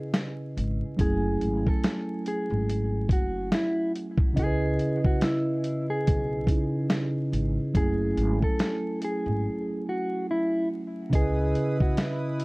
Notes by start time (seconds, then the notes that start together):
Already playing: C#3 C#4 E4 G#4 B4 D#5
0.14 snare, closed hi-hat
0.57 G#1, closed hi-hat
0.97 F#1 F#3 C#4 E4, kick, closed hi-hat
1.01 A3 G#4 G#5
1.41 G#1, closed hi-hat
1.67 A4, kick
1.84 snare, closed hi-hat
2.26 G#4, closed hi-hat
2.50 G#1
2.70 closed hi-hat
3.09 F#1 F#4, kick, closed hi-hat
3.52 E4, snare, closed hi-hat
3.95 closed hi-hat
4.17 C2, kick
4.33 C#2 C#3 C#4 D#5, kick, closed hi-hat
4.38 E4 G#4 A4
4.46 B4
4.79 closed hi-hat
5.05 F#4, kick
5.21 E4, snare, closed hi-hat
5.64 closed hi-hat
5.90 G#4
6.07 B1, kick, closed hi-hat
6.47 C#3 C#4 D#4 E4 G#4, kick, closed hi-hat
6.90 snare, closed hi-hat
7.32 G#1, closed hi-hat
7.74 F#1 F#3 C#4 E4 G#4, kick, closed hi-hat
7.78 A3 G#5
8.17 G#1, closed hi-hat
8.42 A4, kick
8.59 snare, closed hi-hat
9.02 G#4, closed hi-hat
9.26 G#1
9.89 F#4
10.31 E4
11.10 C#2 C#3 C#4 E4 B4 D#5 D#6, kick, closed hi-hat
11.14 E4 G#4 B4
11.55 closed hi-hat
11.80 F#4, kick
11.97 E4, snare, closed hi-hat
12.40 closed hi-hat